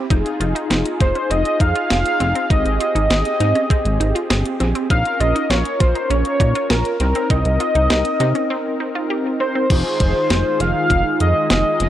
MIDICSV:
0, 0, Header, 1, 7, 480
1, 0, Start_track
1, 0, Key_signature, -4, "minor"
1, 0, Tempo, 600000
1, 82, Time_signature, 4, 2, 24, 8
1, 9512, End_track
2, 0, Start_track
2, 0, Title_t, "Analog synth lead"
2, 0, Program_c, 0, 81
2, 808, Note_on_c, 0, 72, 93
2, 1048, Note_on_c, 0, 75, 104
2, 1060, Note_off_c, 0, 72, 0
2, 1287, Note_on_c, 0, 77, 115
2, 1299, Note_off_c, 0, 75, 0
2, 2005, Note_on_c, 0, 75, 102
2, 2017, Note_off_c, 0, 77, 0
2, 2240, Note_off_c, 0, 75, 0
2, 2245, Note_on_c, 0, 75, 100
2, 3652, Note_off_c, 0, 75, 0
2, 3923, Note_on_c, 0, 77, 112
2, 4162, Note_on_c, 0, 75, 97
2, 4174, Note_off_c, 0, 77, 0
2, 4401, Note_on_c, 0, 73, 95
2, 4413, Note_off_c, 0, 75, 0
2, 4643, Note_on_c, 0, 72, 94
2, 4655, Note_off_c, 0, 73, 0
2, 4884, Note_on_c, 0, 73, 103
2, 4896, Note_off_c, 0, 72, 0
2, 5364, Note_on_c, 0, 70, 90
2, 5376, Note_off_c, 0, 73, 0
2, 5601, Note_off_c, 0, 70, 0
2, 5606, Note_on_c, 0, 70, 85
2, 5846, Note_on_c, 0, 75, 104
2, 5858, Note_off_c, 0, 70, 0
2, 7284, Note_off_c, 0, 75, 0
2, 7522, Note_on_c, 0, 72, 86
2, 7745, Note_off_c, 0, 72, 0
2, 7765, Note_on_c, 0, 72, 98
2, 8485, Note_on_c, 0, 77, 120
2, 8497, Note_off_c, 0, 72, 0
2, 8961, Note_off_c, 0, 77, 0
2, 8965, Note_on_c, 0, 75, 97
2, 9187, Note_off_c, 0, 75, 0
2, 9205, Note_on_c, 0, 75, 103
2, 9512, Note_off_c, 0, 75, 0
2, 9512, End_track
3, 0, Start_track
3, 0, Title_t, "Analog polysynth"
3, 0, Program_c, 1, 90
3, 83, Note_on_c, 1, 63, 81
3, 83, Note_on_c, 1, 65, 74
3, 83, Note_on_c, 1, 68, 87
3, 1971, Note_off_c, 1, 63, 0
3, 1971, Note_off_c, 1, 65, 0
3, 1971, Note_off_c, 1, 68, 0
3, 2003, Note_on_c, 1, 60, 69
3, 2003, Note_on_c, 1, 67, 63
3, 2003, Note_on_c, 1, 68, 74
3, 3891, Note_off_c, 1, 60, 0
3, 3891, Note_off_c, 1, 67, 0
3, 3891, Note_off_c, 1, 68, 0
3, 3919, Note_on_c, 1, 65, 64
3, 3920, Note_on_c, 1, 61, 66
3, 3920, Note_on_c, 1, 70, 77
3, 5569, Note_off_c, 1, 65, 0
3, 5570, Note_off_c, 1, 61, 0
3, 5570, Note_off_c, 1, 70, 0
3, 5600, Note_on_c, 1, 63, 61
3, 5601, Note_on_c, 1, 60, 66
3, 5601, Note_on_c, 1, 70, 72
3, 7730, Note_off_c, 1, 60, 0
3, 7730, Note_off_c, 1, 63, 0
3, 7730, Note_off_c, 1, 70, 0
3, 7762, Note_on_c, 1, 65, 64
3, 7763, Note_on_c, 1, 63, 70
3, 7763, Note_on_c, 1, 68, 75
3, 9512, Note_off_c, 1, 63, 0
3, 9512, Note_off_c, 1, 65, 0
3, 9512, Note_off_c, 1, 68, 0
3, 9512, End_track
4, 0, Start_track
4, 0, Title_t, "Synth arpeggio sound"
4, 0, Program_c, 2, 84
4, 83, Note_on_c, 2, 63, 92
4, 285, Note_off_c, 2, 63, 0
4, 323, Note_on_c, 2, 65, 80
4, 424, Note_off_c, 2, 65, 0
4, 442, Note_on_c, 2, 63, 72
4, 544, Note_off_c, 2, 63, 0
4, 562, Note_on_c, 2, 63, 83
4, 764, Note_off_c, 2, 63, 0
4, 803, Note_on_c, 2, 63, 78
4, 904, Note_off_c, 2, 63, 0
4, 923, Note_on_c, 2, 61, 70
4, 1024, Note_off_c, 2, 61, 0
4, 1043, Note_on_c, 2, 60, 89
4, 1245, Note_off_c, 2, 60, 0
4, 1282, Note_on_c, 2, 63, 74
4, 1383, Note_off_c, 2, 63, 0
4, 1403, Note_on_c, 2, 65, 72
4, 1504, Note_off_c, 2, 65, 0
4, 1523, Note_on_c, 2, 68, 83
4, 1725, Note_off_c, 2, 68, 0
4, 1762, Note_on_c, 2, 60, 82
4, 1863, Note_off_c, 2, 60, 0
4, 1882, Note_on_c, 2, 60, 74
4, 1983, Note_off_c, 2, 60, 0
4, 2002, Note_on_c, 2, 63, 95
4, 2204, Note_off_c, 2, 63, 0
4, 2243, Note_on_c, 2, 65, 78
4, 2344, Note_off_c, 2, 65, 0
4, 2362, Note_on_c, 2, 63, 74
4, 2463, Note_off_c, 2, 63, 0
4, 2482, Note_on_c, 2, 63, 85
4, 2684, Note_off_c, 2, 63, 0
4, 2723, Note_on_c, 2, 63, 80
4, 2824, Note_off_c, 2, 63, 0
4, 2842, Note_on_c, 2, 61, 70
4, 2943, Note_off_c, 2, 61, 0
4, 2962, Note_on_c, 2, 60, 91
4, 3164, Note_off_c, 2, 60, 0
4, 3201, Note_on_c, 2, 63, 75
4, 3303, Note_off_c, 2, 63, 0
4, 3321, Note_on_c, 2, 65, 76
4, 3423, Note_off_c, 2, 65, 0
4, 3441, Note_on_c, 2, 68, 85
4, 3644, Note_off_c, 2, 68, 0
4, 3682, Note_on_c, 2, 60, 82
4, 3783, Note_off_c, 2, 60, 0
4, 3802, Note_on_c, 2, 60, 77
4, 3903, Note_off_c, 2, 60, 0
4, 3922, Note_on_c, 2, 63, 94
4, 4124, Note_off_c, 2, 63, 0
4, 4163, Note_on_c, 2, 65, 76
4, 4264, Note_off_c, 2, 65, 0
4, 4282, Note_on_c, 2, 63, 73
4, 4384, Note_off_c, 2, 63, 0
4, 4402, Note_on_c, 2, 65, 84
4, 4604, Note_off_c, 2, 65, 0
4, 4641, Note_on_c, 2, 65, 76
4, 4743, Note_off_c, 2, 65, 0
4, 4762, Note_on_c, 2, 63, 72
4, 4863, Note_off_c, 2, 63, 0
4, 4883, Note_on_c, 2, 61, 89
4, 5085, Note_off_c, 2, 61, 0
4, 5123, Note_on_c, 2, 63, 75
4, 5224, Note_off_c, 2, 63, 0
4, 5243, Note_on_c, 2, 65, 75
4, 5344, Note_off_c, 2, 65, 0
4, 5363, Note_on_c, 2, 68, 83
4, 5565, Note_off_c, 2, 68, 0
4, 5603, Note_on_c, 2, 60, 78
4, 5704, Note_off_c, 2, 60, 0
4, 5723, Note_on_c, 2, 60, 74
4, 5824, Note_off_c, 2, 60, 0
4, 5843, Note_on_c, 2, 63, 91
4, 6045, Note_off_c, 2, 63, 0
4, 6082, Note_on_c, 2, 65, 79
4, 6183, Note_off_c, 2, 65, 0
4, 6202, Note_on_c, 2, 63, 77
4, 6303, Note_off_c, 2, 63, 0
4, 6322, Note_on_c, 2, 63, 85
4, 6524, Note_off_c, 2, 63, 0
4, 6563, Note_on_c, 2, 63, 81
4, 6664, Note_off_c, 2, 63, 0
4, 6681, Note_on_c, 2, 61, 69
4, 6783, Note_off_c, 2, 61, 0
4, 6802, Note_on_c, 2, 60, 89
4, 7004, Note_off_c, 2, 60, 0
4, 7042, Note_on_c, 2, 63, 74
4, 7143, Note_off_c, 2, 63, 0
4, 7162, Note_on_c, 2, 65, 73
4, 7263, Note_off_c, 2, 65, 0
4, 7281, Note_on_c, 2, 67, 83
4, 7484, Note_off_c, 2, 67, 0
4, 7521, Note_on_c, 2, 60, 80
4, 7623, Note_off_c, 2, 60, 0
4, 7642, Note_on_c, 2, 60, 76
4, 7743, Note_off_c, 2, 60, 0
4, 9512, End_track
5, 0, Start_track
5, 0, Title_t, "Analog synth pad"
5, 0, Program_c, 3, 89
5, 7759, Note_on_c, 3, 51, 79
5, 7759, Note_on_c, 3, 65, 88
5, 7760, Note_on_c, 3, 56, 74
5, 9512, Note_off_c, 3, 51, 0
5, 9512, Note_off_c, 3, 56, 0
5, 9512, Note_off_c, 3, 65, 0
5, 9512, End_track
6, 0, Start_track
6, 0, Title_t, "Analog synth bass"
6, 0, Program_c, 4, 38
6, 83, Note_on_c, 4, 29, 107
6, 190, Note_off_c, 4, 29, 0
6, 322, Note_on_c, 4, 29, 100
6, 429, Note_off_c, 4, 29, 0
6, 563, Note_on_c, 4, 29, 100
6, 670, Note_off_c, 4, 29, 0
6, 805, Note_on_c, 4, 29, 97
6, 911, Note_off_c, 4, 29, 0
6, 1042, Note_on_c, 4, 29, 113
6, 1149, Note_off_c, 4, 29, 0
6, 1281, Note_on_c, 4, 41, 98
6, 1389, Note_off_c, 4, 41, 0
6, 1522, Note_on_c, 4, 29, 108
6, 1630, Note_off_c, 4, 29, 0
6, 1762, Note_on_c, 4, 29, 101
6, 1869, Note_off_c, 4, 29, 0
6, 2002, Note_on_c, 4, 32, 105
6, 2109, Note_off_c, 4, 32, 0
6, 2121, Note_on_c, 4, 32, 101
6, 2229, Note_off_c, 4, 32, 0
6, 2361, Note_on_c, 4, 32, 89
6, 2469, Note_off_c, 4, 32, 0
6, 2481, Note_on_c, 4, 32, 98
6, 2589, Note_off_c, 4, 32, 0
6, 2721, Note_on_c, 4, 44, 98
6, 2829, Note_off_c, 4, 44, 0
6, 3081, Note_on_c, 4, 32, 100
6, 3189, Note_off_c, 4, 32, 0
6, 3201, Note_on_c, 4, 32, 100
6, 3309, Note_off_c, 4, 32, 0
6, 3442, Note_on_c, 4, 31, 95
6, 3549, Note_off_c, 4, 31, 0
6, 3682, Note_on_c, 4, 34, 89
6, 3789, Note_off_c, 4, 34, 0
6, 3922, Note_on_c, 4, 34, 105
6, 4029, Note_off_c, 4, 34, 0
6, 4160, Note_on_c, 4, 34, 98
6, 4268, Note_off_c, 4, 34, 0
6, 4399, Note_on_c, 4, 34, 100
6, 4508, Note_off_c, 4, 34, 0
6, 4644, Note_on_c, 4, 34, 96
6, 4750, Note_off_c, 4, 34, 0
6, 4880, Note_on_c, 4, 34, 92
6, 4988, Note_off_c, 4, 34, 0
6, 5121, Note_on_c, 4, 46, 99
6, 5229, Note_off_c, 4, 46, 0
6, 5360, Note_on_c, 4, 34, 100
6, 5468, Note_off_c, 4, 34, 0
6, 5600, Note_on_c, 4, 36, 92
6, 5708, Note_off_c, 4, 36, 0
6, 5841, Note_on_c, 4, 36, 104
6, 5949, Note_off_c, 4, 36, 0
6, 5962, Note_on_c, 4, 36, 98
6, 6069, Note_off_c, 4, 36, 0
6, 6201, Note_on_c, 4, 36, 91
6, 6309, Note_off_c, 4, 36, 0
6, 6321, Note_on_c, 4, 36, 107
6, 6429, Note_off_c, 4, 36, 0
6, 6561, Note_on_c, 4, 48, 98
6, 6668, Note_off_c, 4, 48, 0
6, 7762, Note_on_c, 4, 29, 101
6, 7869, Note_off_c, 4, 29, 0
6, 8002, Note_on_c, 4, 29, 101
6, 8109, Note_off_c, 4, 29, 0
6, 8242, Note_on_c, 4, 29, 103
6, 8349, Note_off_c, 4, 29, 0
6, 8482, Note_on_c, 4, 29, 98
6, 8589, Note_off_c, 4, 29, 0
6, 8721, Note_on_c, 4, 29, 112
6, 8828, Note_off_c, 4, 29, 0
6, 8963, Note_on_c, 4, 41, 98
6, 9070, Note_off_c, 4, 41, 0
6, 9204, Note_on_c, 4, 29, 108
6, 9310, Note_off_c, 4, 29, 0
6, 9443, Note_on_c, 4, 29, 101
6, 9512, Note_off_c, 4, 29, 0
6, 9512, End_track
7, 0, Start_track
7, 0, Title_t, "Drums"
7, 83, Note_on_c, 9, 36, 110
7, 86, Note_on_c, 9, 42, 71
7, 163, Note_off_c, 9, 36, 0
7, 166, Note_off_c, 9, 42, 0
7, 206, Note_on_c, 9, 42, 47
7, 286, Note_off_c, 9, 42, 0
7, 325, Note_on_c, 9, 42, 75
7, 405, Note_off_c, 9, 42, 0
7, 448, Note_on_c, 9, 42, 55
7, 528, Note_off_c, 9, 42, 0
7, 565, Note_on_c, 9, 42, 76
7, 567, Note_on_c, 9, 38, 112
7, 645, Note_off_c, 9, 42, 0
7, 647, Note_off_c, 9, 38, 0
7, 684, Note_on_c, 9, 42, 57
7, 764, Note_off_c, 9, 42, 0
7, 804, Note_on_c, 9, 36, 102
7, 804, Note_on_c, 9, 42, 74
7, 884, Note_off_c, 9, 36, 0
7, 884, Note_off_c, 9, 42, 0
7, 923, Note_on_c, 9, 42, 40
7, 1003, Note_off_c, 9, 42, 0
7, 1046, Note_on_c, 9, 42, 68
7, 1126, Note_off_c, 9, 42, 0
7, 1162, Note_on_c, 9, 42, 52
7, 1242, Note_off_c, 9, 42, 0
7, 1281, Note_on_c, 9, 36, 84
7, 1284, Note_on_c, 9, 42, 70
7, 1361, Note_off_c, 9, 36, 0
7, 1364, Note_off_c, 9, 42, 0
7, 1404, Note_on_c, 9, 42, 56
7, 1484, Note_off_c, 9, 42, 0
7, 1523, Note_on_c, 9, 38, 110
7, 1526, Note_on_c, 9, 42, 62
7, 1603, Note_off_c, 9, 38, 0
7, 1606, Note_off_c, 9, 42, 0
7, 1644, Note_on_c, 9, 42, 57
7, 1724, Note_off_c, 9, 42, 0
7, 1762, Note_on_c, 9, 42, 67
7, 1842, Note_off_c, 9, 42, 0
7, 1884, Note_on_c, 9, 42, 54
7, 1964, Note_off_c, 9, 42, 0
7, 2002, Note_on_c, 9, 36, 115
7, 2004, Note_on_c, 9, 42, 70
7, 2082, Note_off_c, 9, 36, 0
7, 2084, Note_off_c, 9, 42, 0
7, 2124, Note_on_c, 9, 42, 46
7, 2204, Note_off_c, 9, 42, 0
7, 2244, Note_on_c, 9, 42, 75
7, 2324, Note_off_c, 9, 42, 0
7, 2366, Note_on_c, 9, 42, 55
7, 2446, Note_off_c, 9, 42, 0
7, 2483, Note_on_c, 9, 42, 77
7, 2485, Note_on_c, 9, 38, 112
7, 2563, Note_off_c, 9, 42, 0
7, 2565, Note_off_c, 9, 38, 0
7, 2602, Note_on_c, 9, 42, 54
7, 2682, Note_off_c, 9, 42, 0
7, 2723, Note_on_c, 9, 42, 75
7, 2803, Note_off_c, 9, 42, 0
7, 2843, Note_on_c, 9, 42, 40
7, 2923, Note_off_c, 9, 42, 0
7, 2961, Note_on_c, 9, 36, 87
7, 2967, Note_on_c, 9, 42, 65
7, 3041, Note_off_c, 9, 36, 0
7, 3047, Note_off_c, 9, 42, 0
7, 3083, Note_on_c, 9, 42, 52
7, 3163, Note_off_c, 9, 42, 0
7, 3206, Note_on_c, 9, 42, 70
7, 3286, Note_off_c, 9, 42, 0
7, 3326, Note_on_c, 9, 42, 55
7, 3406, Note_off_c, 9, 42, 0
7, 3443, Note_on_c, 9, 38, 108
7, 3445, Note_on_c, 9, 42, 64
7, 3523, Note_off_c, 9, 38, 0
7, 3525, Note_off_c, 9, 42, 0
7, 3564, Note_on_c, 9, 42, 58
7, 3644, Note_off_c, 9, 42, 0
7, 3682, Note_on_c, 9, 42, 66
7, 3762, Note_off_c, 9, 42, 0
7, 3802, Note_on_c, 9, 42, 55
7, 3882, Note_off_c, 9, 42, 0
7, 3922, Note_on_c, 9, 36, 111
7, 3923, Note_on_c, 9, 42, 68
7, 4002, Note_off_c, 9, 36, 0
7, 4003, Note_off_c, 9, 42, 0
7, 4043, Note_on_c, 9, 42, 45
7, 4123, Note_off_c, 9, 42, 0
7, 4164, Note_on_c, 9, 42, 76
7, 4244, Note_off_c, 9, 42, 0
7, 4286, Note_on_c, 9, 42, 55
7, 4366, Note_off_c, 9, 42, 0
7, 4403, Note_on_c, 9, 42, 78
7, 4405, Note_on_c, 9, 38, 114
7, 4483, Note_off_c, 9, 42, 0
7, 4485, Note_off_c, 9, 38, 0
7, 4523, Note_on_c, 9, 42, 55
7, 4603, Note_off_c, 9, 42, 0
7, 4643, Note_on_c, 9, 42, 75
7, 4644, Note_on_c, 9, 36, 105
7, 4723, Note_off_c, 9, 42, 0
7, 4724, Note_off_c, 9, 36, 0
7, 4764, Note_on_c, 9, 42, 41
7, 4844, Note_off_c, 9, 42, 0
7, 4885, Note_on_c, 9, 42, 67
7, 4965, Note_off_c, 9, 42, 0
7, 5001, Note_on_c, 9, 42, 50
7, 5081, Note_off_c, 9, 42, 0
7, 5121, Note_on_c, 9, 36, 84
7, 5124, Note_on_c, 9, 42, 71
7, 5201, Note_off_c, 9, 36, 0
7, 5204, Note_off_c, 9, 42, 0
7, 5243, Note_on_c, 9, 42, 53
7, 5323, Note_off_c, 9, 42, 0
7, 5361, Note_on_c, 9, 38, 112
7, 5363, Note_on_c, 9, 42, 65
7, 5441, Note_off_c, 9, 38, 0
7, 5443, Note_off_c, 9, 42, 0
7, 5481, Note_on_c, 9, 42, 56
7, 5561, Note_off_c, 9, 42, 0
7, 5600, Note_on_c, 9, 42, 66
7, 5680, Note_off_c, 9, 42, 0
7, 5721, Note_on_c, 9, 42, 56
7, 5801, Note_off_c, 9, 42, 0
7, 5841, Note_on_c, 9, 36, 114
7, 5842, Note_on_c, 9, 42, 69
7, 5921, Note_off_c, 9, 36, 0
7, 5922, Note_off_c, 9, 42, 0
7, 5961, Note_on_c, 9, 42, 45
7, 6041, Note_off_c, 9, 42, 0
7, 6082, Note_on_c, 9, 42, 74
7, 6162, Note_off_c, 9, 42, 0
7, 6203, Note_on_c, 9, 42, 54
7, 6283, Note_off_c, 9, 42, 0
7, 6321, Note_on_c, 9, 42, 77
7, 6323, Note_on_c, 9, 38, 110
7, 6401, Note_off_c, 9, 42, 0
7, 6403, Note_off_c, 9, 38, 0
7, 6440, Note_on_c, 9, 42, 55
7, 6520, Note_off_c, 9, 42, 0
7, 6561, Note_on_c, 9, 42, 74
7, 6641, Note_off_c, 9, 42, 0
7, 6681, Note_on_c, 9, 42, 41
7, 6761, Note_off_c, 9, 42, 0
7, 7761, Note_on_c, 9, 36, 115
7, 7762, Note_on_c, 9, 42, 67
7, 7762, Note_on_c, 9, 49, 92
7, 7841, Note_off_c, 9, 36, 0
7, 7842, Note_off_c, 9, 42, 0
7, 7842, Note_off_c, 9, 49, 0
7, 8001, Note_on_c, 9, 42, 75
7, 8002, Note_on_c, 9, 36, 91
7, 8081, Note_off_c, 9, 42, 0
7, 8082, Note_off_c, 9, 36, 0
7, 8242, Note_on_c, 9, 42, 75
7, 8244, Note_on_c, 9, 38, 114
7, 8322, Note_off_c, 9, 42, 0
7, 8324, Note_off_c, 9, 38, 0
7, 8481, Note_on_c, 9, 42, 76
7, 8561, Note_off_c, 9, 42, 0
7, 8720, Note_on_c, 9, 36, 83
7, 8723, Note_on_c, 9, 42, 69
7, 8800, Note_off_c, 9, 36, 0
7, 8803, Note_off_c, 9, 42, 0
7, 8962, Note_on_c, 9, 42, 71
7, 9042, Note_off_c, 9, 42, 0
7, 9201, Note_on_c, 9, 38, 114
7, 9203, Note_on_c, 9, 42, 63
7, 9281, Note_off_c, 9, 38, 0
7, 9283, Note_off_c, 9, 42, 0
7, 9441, Note_on_c, 9, 42, 68
7, 9512, Note_off_c, 9, 42, 0
7, 9512, End_track
0, 0, End_of_file